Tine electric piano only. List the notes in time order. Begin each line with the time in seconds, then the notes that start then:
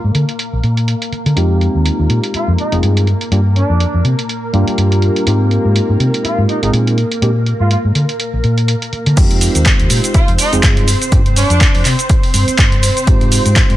1.36 G#3 C4 D#4 F4 G4
2.72 G#3 C4 D#4 F4 G#4
3.32 G3 A#3 D4 F4 G4
4.53 G3 A#3 D4 F4 G4
5.26 G#3 C4 D#4 F4 G4
6.62 G#3 C4 D#4 F4 G#4
7.22 G#3 A#3 C4 D4 G4
9.16 G#3 C4 D#4 F4 G4
10.52 G#3 C4 D#4 F4 G#4
11.12 G3 A#3 D4 F4 G4
13.07 G#3 C4 D#4 F4 G4